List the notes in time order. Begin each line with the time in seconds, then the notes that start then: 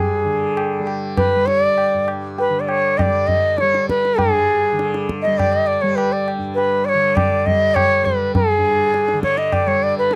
Already playing: G2 D3 G3 G#4
0.24 D3
0.57 tabla na
0.79 G3
0.87 tabla na
1.17 B4, tabla na, tabla ge
1.36 G3
1.46 C#5, tabla te
1.62 D5
1.78 tabla na
1.94 G2
2.08 tabla na
2.38 B4, tabla tin
2.49 D3
2.60 D5
2.68 C#5, tabla na
2.98 D5 D#5, tabla na, tabla ge
3.05 G3
3.27 D#5, tabla ge
3.57 C#5 D5, tabla te
3.62 G3
3.74 tabla te
3.89 B4, tabla ke
4.05 tabla te
4.18 G2 G#4, tabla tin, tabla ge
4.72 D3
4.79 tabla te
4.94 tabla te
5.09 tabla ke
5.22 D#5, tabla te
5.27 G3
5.38 D5, tabla na, tabla ge
5.53 D#5
5.67 D5
5.81 G3 C#5
5.96 B4, tabla na
6.12 D5
6.28 tabla na
6.39 G2
6.55 B4, tabla tin
6.85 C#5 D5
6.94 D3
7.16 D5, tabla na, tabla ge
7.46 G3 D#5, tabla ge
7.75 C#5, tabla na, tabla ge
8.03 G3 B4, tabla ge
8.35 G#4, tabla tin, tabla ge
8.58 G2
8.94 tabla te
9.08 tabla te
9.13 D3
9.23 C#5, tabla ke
9.38 D#5, tabla te
9.52 D5, tabla na, tabla ge
9.67 G3 C#5
9.83 D5
9.98 B4
10.11 tabla te